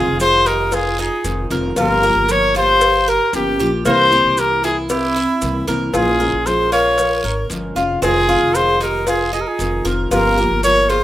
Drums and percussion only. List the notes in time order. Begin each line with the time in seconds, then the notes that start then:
0.20 cowbell, short guiro, maracas
0.46 cowbell, short guiro, maracas
0.72 cowbell, long guiro, maracas
0.98 maracas
1.24 cowbell, short guiro, maracas
1.50 cowbell, short guiro, maracas
1.76 cowbell, long guiro, maracas
2.03 maracas
2.29 cowbell, short guiro, maracas
2.54 cowbell, short guiro, maracas
2.81 cowbell, long guiro, maracas
3.07 maracas
3.33 cowbell, short guiro, maracas
3.59 short guiro, maracas
3.85 cowbell, long guiro, maracas
4.12 maracas
4.37 cowbell, short guiro, maracas
4.63 cowbell, short guiro, maracas
4.89 cowbell, long guiro, maracas
5.16 maracas
5.42 cowbell, short guiro, maracas
5.67 cowbell, short guiro, maracas
5.94 cowbell, long guiro, maracas
6.21 maracas
6.46 cowbell, short guiro, maracas
6.72 cowbell, short guiro, maracas
6.98 cowbell, long guiro, maracas
7.25 maracas
7.50 cowbell, short guiro, maracas
7.76 short guiro, maracas
8.02 cowbell, long guiro, maracas
8.29 maracas
8.54 cowbell, short guiro, maracas
8.80 cowbell, short guiro, maracas
9.07 cowbell, long guiro, maracas
9.34 maracas
9.59 cowbell, short guiro, maracas
9.85 cowbell, short guiro, maracas
10.11 cowbell, long guiro, maracas
10.38 maracas
10.63 cowbell, short guiro, maracas
10.89 cowbell, short guiro, maracas